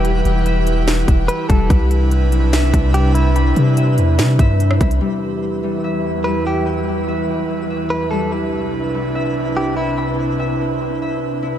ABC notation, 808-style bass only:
X:1
M:4/4
L:1/16
Q:1/4=145
K:Em
V:1 name="808-style bass" clef=bass
E,,,2 E,,,8 E,,,2 z2 E,,,2 | C,,4- C,, B,,,2- B,,,/2 C,,2- C,,/2 C,,6- | C,,2 C,4 E,,2 C,2 G,,4 C,,2 | z16 |
z16 | z16 | z16 |]